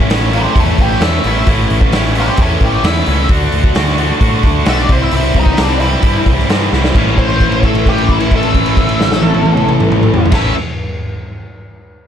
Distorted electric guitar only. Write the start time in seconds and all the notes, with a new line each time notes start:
Already playing: C#4 E4
0.09 A2 E3 A3 C#4 E4
0.32 A2 E3 A3 C#4 E4
0.54 A2 E3 A3 C#4 E4
1.00 A2 E3 A3 C#4 E4
1.25 A2 E3 A3 C#4 E4
1.47 A2 E3 A3 C#4 E4
1.94 A2 E3 A3 C#4 E4
2.17 A2 E3 A3 C#4 E4
2.40 A2 E3 A3 C#4 E4
2.84 A2 E3 A3 C#4 E4
3.06 A2 E3 A3 C#4 E4
3.30 D3 A3 D4 F#4
3.75 D3 A3 D4 F#4
3.98 D3 A3 D4 F#4
4.20 D3 A3 D4 F#4
4.67 D3 A3 D4 F#4
4.88 C3 E3 G3 C4 E4
5.12 C3 E3 G3 C4 E4
5.58 C3 E3 G3 C4 E4
5.80 C3 E3 G3 C4 E4
6.02 C3 E3 G3 C4 E4
6.49 C3 E3 G3 C4 E4
6.72 C3 E3 G3 C4 E4
6.94 A2 E3 A3 C#4
6.98 E4
10.31 A2 E3 A3 C#4
10.35 E4